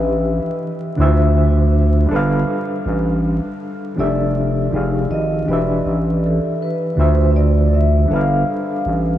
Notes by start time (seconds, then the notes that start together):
Already playing: A1 E3 D4 G4 B4 E5
0.96 D2 D3 D4 E4 C5
1.01 E5
1.06 F4
2.06 G3 D4
2.11 G1 A4 B4
2.16 F5
2.86 A1
3.96 F1 F3 C4 D4 G4 A4 D5
4.00 E5
4.71 F1 F3 D#4 G4 G#4
4.76 F5
5.10 G#1 D#5
5.43 E3 D4
5.48 E1 G4 B4 D5
5.53 E5
5.86 A1
6.26 A4
6.62 B4
6.95 D2 D3 D4 F4 C5
7.00 E5
7.30 E5
7.36 D5
7.74 E5
8.06 G3 D4
8.11 G1 A4 B4 F5
8.16 F5
8.86 A1